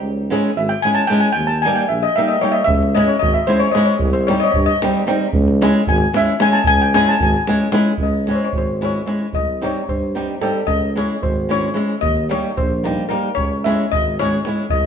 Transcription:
0.01 C#2
0.30 G#3 C#4 E4 G#4
0.56 G#1 E5
0.69 G5
0.82 G#3 C#4 E4 G#5
0.87 G#4
0.95 A5
1.07 G#3 C#4 G5
1.11 E4 G#4
1.20 G#5
1.32 D#2 G5
1.47 A5
1.62 G3 A#3 G#5
1.66 D#4 G4
1.75 G5
1.89 A#1 E5
2.03 D#5
2.16 G3 A#3 D#4 G4 E5
2.28 D#5
2.41 G3 A#3 D#4 G4 C#5
2.52 D#5 E5
2.64 C#2 E5, davul low
2.83 davul high
2.95 G#3 C#4 E4 G#4 D#5, davul high
3.07 C#5
3.19 G#1 D#5, davul low
3.34 E5
3.47 G#3 C#4 E4 G#4 C5, davul high
3.60 C#5, davul high
3.71 G#3 D#5, davul high
3.76 C#4 E4 G#4
3.85 C#5, davul high
3.99 C2, davul low
4.13 C5, davul high
4.27 G3 C4 D#4 G4 C#5, davul high
4.40 C#5 D#5
4.45 D#5
4.52 G2 C#5, davul low
4.66 D#5
4.82 G3 C4 D#4 G4, davul high
5.07 G3 C4 D#4 G4, davul high
5.21 davul high
5.32 C#2, davul low
5.48 davul high
5.61 G#3 C#4 E4 G#4, davul high
5.87 G#1 G#5, davul low
6.13 G#3 C#4 E4 G#4 E5, davul high
6.28 davul high
6.40 G#3 C#4 E4 G#4 G#5, davul high
6.53 A5, davul high
6.64 C#2 G#5, davul low
6.80 G5, davul high
6.94 G#3 C#4 E4 G#4 G#5, davul high
7.09 A5
7.20 G#1 G#5, davul low
7.34 davul high
7.47 G#3 C#4 E4 G#4, davul high
7.60 davul high
7.72 G#3 C#4 E4 G#4, davul high
7.85 davul high
7.98 C#2, davul low
8.03 D#5
8.27 G#3 C#4 E4 G#4 C#5, davul high
8.35 C5
8.40 davul high
8.45 C#5
8.53 G#1, davul low
8.58 C5
8.81 G#3 C#4 E4 G#4 C#5, davul high
9.06 G#3 C#4 E4 G#4, davul high
9.20 davul high
9.32 C2 D#5, davul low
9.61 G3 C4 D#4 G4 C#5, davul high
9.75 davul high
9.87 G2 C5, davul low
10.15 G3 C4 D#4 G4, davul high
10.41 G3 C4 D#4 G4 A4, davul high
10.55 davul high
10.66 C#2 D#5, davul low
10.95 G#3 C#4 E4 G#4 C#5, davul high
11.10 davul high
11.22 G#1 C5, davul low
11.49 G#3 C#4 E4 G#4 C#5, davul high
11.74 G#3 C#4 E4 G#4, davul high
11.90 davul high
12.01 D#2 D#5, davul low
12.16 davul high
12.29 G3 A#3 D#4 G4 C#5, davul high
12.44 davul high
12.57 A#1 C5, davul low
12.84 G3 A#3 D#4 G4, davul high
13.09 G3 A#3 D#4 G4 A#4, davul high
13.35 C#2 C#5, davul low
13.64 G#3 C#4 E4 G#4 E5, davul high
13.80 davul high
13.92 G#1 D#5, davul low
14.19 G#3 C#4 E4 G#4 C#5, davul high
14.45 G#3 C#4 E4 G#4, davul high
14.58 davul high
14.69 C2 D#5, davul low

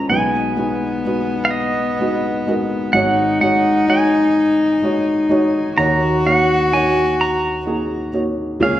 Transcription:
Already playing: G#3 C#4 F4 A#4 C5
0.09 B1 B2 G#3 B3 D#4 F#4 B4 G#5
0.57 G#3 D#4 F#4 B4
1.05 G#3 D#4 F#4 B4
1.45 F5
1.51 D#5
2.00 G#3 D#4 F#4 B4
2.47 G#3 D#4 F#4 A#4
2.93 G#1 G#2 G#3 D#4 F#4 C#5 F#5
3.41 G#3 D#4 F#4 C#5 F#5
3.88 G#3 D#4 F#4 C#5 G#5
4.82 G#3 D#4 F#4 C#5
5.29 G#3 D#4 F#4 C#5
5.76 D#2 D#3 A#3 D#4 F#4 C#5 A#5
6.25 A#3 D#4 F#4 C#5 F#5
6.72 A#3 D#4 F#4 C#5 G#5
7.21 A#5
7.65 A#3 D#4 F#4 G#4
8.13 A#3 D#4 F#4 C#5
8.60 C#2 C#3 A#3 F4 G#4 C#5 F5

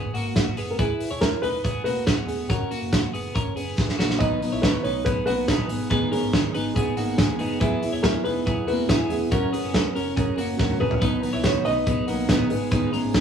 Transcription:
Already playing: G#1 B3 F#4 G#4
0.14 G#1 A#3 F#4, open hi-hat
0.36 G#1, kick, snare, closed hi-hat
0.57 F#1 B3 G#4, open hi-hat
0.71 A#4
0.79 E1 E4 G#4 B4, kick, closed hi-hat
1.00 open hi-hat
1.11 E1 E4 C#5
1.21 E4 A#4 C#5, kick, snare, closed hi-hat
1.42 E1 D#4 B4, open hi-hat
1.64 E1 B3 G#4, kick, closed hi-hat
1.84 E1 A#3 F#4 B4, open hi-hat
2.06 E1 B3 G#4, kick, snare, closed hi-hat
2.27 E1 G#4, open hi-hat
2.49 F#1 C#4 F#4 A#4, kick, closed hi-hat
2.71 A#3 F#4, open hi-hat
2.81 F#1
2.93 kick, snare, closed hi-hat
3.13 F#1 B3 G#4, open hi-hat
3.35 F#1 C#4 A#4, kick, closed hi-hat
3.56 F#1 B3 G#4, open hi-hat
3.78 E1, kick, snare
3.89 snare
3.99 A#1 A#3 F#4, snare
4.10 snare
4.19 B1 B2 D#3 F#3 B3 D#4 B4 D#5, kick, closed hi-hat
4.41 F#3 B3 D#4 B4, open hi-hat
4.52 B1 E4 C#5
4.62 B2 D#3 F#3 B3 D#4 F#4 B4 C#5, kick, snare, closed hi-hat
4.83 B1 F#3 B3 D#4 B4 C#5, open hi-hat
5.05 B1 F#3 B3 D#4 G#4 B4, kick, closed hi-hat
5.26 B1 F#3 A#3 B3 D#4 F#4 B4, open hi-hat
5.47 A#1 B2 D#3 F#3 B3 D#4 G#4 B4, kick, snare, closed hi-hat
5.69 G#1 G#3 B3 D#4 G#4, open hi-hat
5.90 G#2 D#3 G#3 B3 D#4 G#4 B4, kick, closed hi-hat
6.10 B3 C#4 D#4 G#4 A#4, open hi-hat
6.15 G#3
6.23 G#1
6.33 G#2 D#3 G#3 B3 D#4 G#4, kick, snare, closed hi-hat
6.54 G#1 G#3 B3 D#4 G#4 B4, open hi-hat
6.74 G#1 G#3 B3 D#4 G#4, kick, closed hi-hat
6.79 G#4
6.97 G#1 G#3 A#3 B3 D#4 F#4 G#4, open hi-hat
7.18 G#1 G#2 D#3 G#3 B3 D#4 G#4, kick, snare, closed hi-hat
7.39 F#1 G#3 B3 D#4 G#4, open hi-hat
7.60 E1 E3 F#3 B3 E4 G#4 B4, kick, closed hi-hat
7.82 B3 E4 G#4, open hi-hat
7.92 E1 E4 C#5
8.03 E3 F#3 B3 E4 G#4 A#4 C#5, kick, snare, closed hi-hat
8.24 E1 B3 D#4 E4 G#4 B4, open hi-hat
8.46 E1 F#3 B3 E4 G#4, kick, closed hi-hat
8.67 E1 A#3 B3 E4 F#4 G#4 B4, open hi-hat
8.89 E1 E3 F#3 B3 E4 G#4, kick, snare, closed hi-hat
9.09 E1 B3 E4 G#4, open hi-hat
9.31 F#1 F#3 C#4 F#4 A#4, kick, closed hi-hat
9.52 B3 C#4 F#4 G#4 A#4, open hi-hat
9.64 F#1
9.74 F#3 C#4 F#4 A#4, kick, snare, closed hi-hat
9.94 F#1 C#4 F#4 A#4, open hi-hat
10.16 F#1 F#3 C#4 F#4 G#4 A#4, kick, closed hi-hat
10.37 F#1 A#3 C#4 F#4 A#4, open hi-hat
10.58 E1 F#3 C#4 F#4 A#4, kick, snare
10.70 high tom
10.79 A#1 B3 C#4 F#4 G#4 A#4 B4, mid tom
10.91 floor tom
11.01 B1 B2 D#3 F#3 B3 D#4 B4, kick, closed hi-hat
11.23 F#3 B3 D#4 B4, open hi-hat
11.33 B1 E4 C#5
11.44 B2 D#3 F#3 B3 D#4 F#4 B4 C#5, kick, snare, closed hi-hat
11.65 B1 F#3 B3 D#4 B4 D#5, open hi-hat
11.86 B1 F#3 B3 D#4 G#4 B4, kick, closed hi-hat
12.07 B1 F#3 A#3 B3 D#4 F#4 B4, open hi-hat
12.29 A#1 B2 D#3 F#3 B3 D#4 G#4 B4, kick, snare, closed hi-hat
12.50 G#1 G#3 B3 D#4 G#4 B4, open hi-hat
12.71 G#2 D#3 G#3 B3 D#4 G#4 B4, kick, closed hi-hat
12.93 G#3 B3 C#4 D#4 G#4 A#5, open hi-hat
13.04 G#1
13.14 G#2 D#3 G#3 B3 D#4 G#4, kick, snare, closed hi-hat

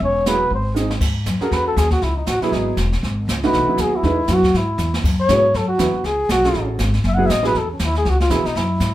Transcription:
0.00 E1 C#4 C#5, brush sweep, kick
0.26 F#3 B3 E4 G#4 B4, snare, hi-hat pedal
0.51 G#1 C4, brush sweep, kick
0.55 C5
0.74 G#3 C4 D#4 G#4, snare, hi-hat pedal
0.90 snare
1.01 G#2, brush sweep, kick, snare, crash
1.26 F#2, kick, snare, hi-hat pedal
1.40 C#4 F#4 G#4 A4 A#4, muted upright bass stroke, snare
1.51 E2 B4, brush sweep, kick, snare
1.67 A4
1.76 D#2 G#4, kick, snare, hi-hat pedal
1.91 F#4, kick, snare
2.02 C#2 E4, brush sweep, snare
2.17 D#4
2.27 A1 F#4, kick, snare, hi-hat pedal
2.41 F#3 B3 E4 G#4, muted upright bass stroke, snare
2.52 G#1 D#4, brush sweep, kick, snare
2.77 E1, kick, snare, hi-hat pedal
2.92 snare
3.02 G#1, brush sweep, kick, snare
3.28 C#2, kick, snare, hi-hat pedal
3.43 E3 A3 D#4 F#4 B4, snare
3.52 B1, brush sweep, kick, snare
3.66 F#3 B3 E4 F#4, muted upright bass stroke
3.77 D#2 G#4, kick, snare, hi-hat pedal
3.96 E4
4.03 E2 A3 D#4 G#4 B4, brush sweep, kick, snare
4.28 F#2 F#3 B3 E4 F#4, kick, snare, hi-hat pedal
4.33 F#4
4.43 kick, snare
4.54 G#2 E4, brush sweep, snare
4.78 E2, snare, hi-hat pedal
4.94 snare
5.04 F#2, brush sweep, kick, snare, crash
5.20 C#5
5.29 G#2 F#3 B3 E4 G#4, kick, snare, hi-hat pedal
5.54 F#2 A4, brush sweep, kick, snare
5.68 F#4
5.78 E2 F#3 B3 E4 B4, kick, snare, hi-hat pedal
5.93 muted upright bass stroke
6.04 C#2 G#4, brush sweep, kick, snare
6.29 B1 F#4, kick, snare, hi-hat pedal
6.44 C#4 F#4 G#4 A4, snare
6.54 A1, brush sweep, kick, snare
6.79 G#1, kick, snare, hi-hat pedal
6.94 snare
7.04 F#1 E5, brush sweep, kick, snare
7.14 F#3 B3 E4 F#5
7.18 G#4
7.26 A1 E5, kick, snare, hi-hat pedal
7.31 D#5
7.42 F#3 B3 E4 G#4, snare
7.47 B4
7.54 E2 A4, brush sweep, kick, snare
7.72 C#4
7.79 D#2, kick, snare, hi-hat pedal
7.84 E4
7.95 G#4, snare
8.05 C#2, brush sweep, kick, snare
8.10 F#4
8.20 F4, snare
8.29 E2 F#3 B3 E4 G#4, kick, snare, hi-hat pedal
8.37 C#2
8.45 B1 D#4, snare
8.55 F#2 E4, brush sweep, kick, snare
8.80 G#2, kick, snare, hi-hat pedal

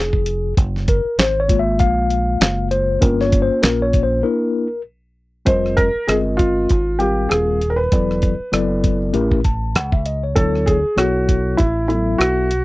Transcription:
Already playing: F1 G#4
0.13 kick
0.26 closed hi-hat
0.57 F#1, kick, closed hi-hat
0.76 snare
0.88 A#4, kick, closed hi-hat
1.05 muted fingered electric bass stroke
1.18 G#1 C5, snare, closed hi-hat
1.40 C#5
1.48 G#3 A#3 F4, kick, closed hi-hat
1.59 E5
1.79 A#1 F5, kick, closed hi-hat
2.10 closed hi-hat
2.40 F#1, snare, closed hi-hat
2.71 C5, closed hi-hat
3.01 G1 A#3 C#4 F4 A#4, kick, closed hi-hat
3.21 C#5, snare
3.32 kick, closed hi-hat
3.42 C5
3.62 A#1 A#4, snare, closed hi-hat
3.82 C#5
3.93 kick, closed hi-hat
4.03 C5
4.23 A#3 D4 E4 A#4
5.45 F1 G3 C4 F4 A#4 C5 D#5, kick, closed hi-hat
5.66 cross-stick
5.77 A#4, kick, closed hi-hat
5.95 muted fingered electric bass stroke
6.08 G1 G#3 C4 F4 G#4 A#4 D#5, cross-stick, closed hi-hat
6.37 F4, kick, closed hi-hat
6.69 G#1, kick, closed hi-hat
6.99 G3 C4 F4 G4 A#4 F5, closed hi-hat
7.29 D#1 G#4, cross-stick, closed hi-hat
7.61 closed hi-hat
7.70 A#4
7.76 B4
7.92 E1 F#3 B3 E4 A4 D5, kick, closed hi-hat
8.11 cross-stick
8.22 kick, closed hi-hat
8.40 muted fingered electric bass stroke
8.52 F#1 F#3 B3 E4 A4 D5, cross-stick, closed hi-hat
8.84 kick, closed hi-hat
9.13 A1 A3 C#4 E4 G4 A#4, closed hi-hat
9.31 kick
9.44 A5, kick, closed hi-hat
9.75 C#2 F#5, cross-stick, closed hi-hat
9.92 E5, kick
10.06 D#5, closed hi-hat
10.24 C#5
10.35 D2 F#3 B3 E4 A4 C#5, kick, closed hi-hat
10.55 cross-stick
10.66 G#4, kick, closed hi-hat
10.84 muted fingered electric bass stroke
10.96 B1 F#3 B3 E4 F#4 A4 C#5, cross-stick, closed hi-hat
11.29 kick, closed hi-hat
11.57 A1 E4, kick, closed hi-hat
11.88 E3 B3 E4 A4 E5, closed hi-hat
11.95 F#3
12.18 B1 F#4, cross-stick, closed hi-hat
12.51 closed hi-hat

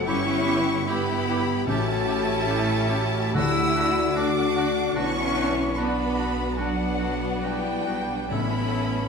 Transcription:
Already playing: F#2 C#4 A4 C#5 F#5 A5
0.05 G1 G2 B3 C#4 E4 G4 G5 C#6
0.28 B3
0.47 E4 G4
0.67 B4
0.86 B3 E4 G4 E5 G5 B5
1.08 G5
1.28 E4 G4 B4
1.48 G4
1.66 A1 A2 A3 C#4 E4 F#4 G4 E5 A5
1.89 C#4
2.07 C#4 G4
2.46 C#4 E4 G4 E5
2.69 G5
2.88 C#4 F#4 G4
3.13 G4
3.32 D2 D3 A3 D4 E4 F#4 G4 F#5 E6
3.55 D4
3.74 D4 F#4 A4
3.96 D5
4.15 A3 D4 F#4 F#5 D6
4.36 A5
4.56 D4 F#4 D5
4.75 A4
4.95 B1 B2 B3 C#4 D4 E4 F#4 B4 C#6
5.16 B3
5.36 D4 F#4
5.58 B4
5.73 D4 F#4 B4 B5 C#6
5.77 B3 D4 F#4 D5 B5
5.99 F#5
6.16 D4 F#4 B4
6.40 F#4
6.57 F#3 B3 D4 F#4 B4 F#5
6.61 D4
6.80 B3
6.99 D4 F#4
7.22 B4
7.42 G3 D4 F#4 D5 G5
7.46 E4
7.66 F#5
7.86 D4 F#4 B4
7.91 D4
8.11 F#4
8.30 A1 A2 B3 C#4 E4 A4 E5 B5
8.35 C#4
8.75 C#4 E4 A4
8.99 C#5

